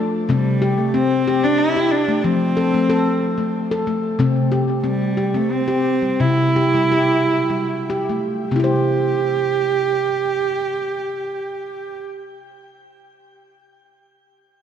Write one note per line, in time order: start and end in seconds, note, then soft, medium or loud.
0.00 0.29 A3 medium
0.00 0.28 F4 medium
0.00 0.26 C5 medium
0.00 0.28 A5 medium
0.29 1.55 C3 medium
0.29 0.79 G3 medium
0.29 0.62 C4 medium
0.62 0.94 G4 medium
0.78 0.96 A3 medium
0.94 1.27 C4 medium
0.94 1.45 C4 medium
1.28 1.44 G4 medium
1.44 1.76 C4 soft
1.44 1.60 D4 medium
1.58 1.93 E4 medium
1.76 2.08 G4 medium
1.91 2.25 D4 medium
2.08 2.41 A3 soft
2.24 3.50 F3 medium
2.24 3.53 C4 medium
2.57 2.73 A4 medium
2.74 2.90 A3 medium
2.90 3.22 A4 medium
3.38 3.70 A3 soft
3.71 3.87 A4 medium
3.87 4.19 A3 medium
4.19 5.46 C3 medium
4.19 4.52 C4 medium
4.52 4.84 G4 medium
4.84 5.37 G3 medium
4.84 5.17 C4 medium
5.17 5.34 G4 soft
5.34 5.53 A3 medium
5.34 5.68 C4 soft
5.52 6.22 C4 medium
5.68 6.02 G4 medium
6.02 6.37 G3 soft
6.20 7.65 C3 medium
6.20 8.09 E4 medium
6.56 6.74 G4 medium
6.75 6.92 G3 medium
6.92 7.29 G4 medium
7.50 7.89 G3 soft
7.90 8.09 G4 medium
8.09 8.51 A3 soft
8.51 12.01 C3 medium
8.51 12.02 C4 soft
8.51 12.01 G4 medium
8.56 12.06 E4 soft
8.56 12.10 G4 soft
8.64 12.14 C5 soft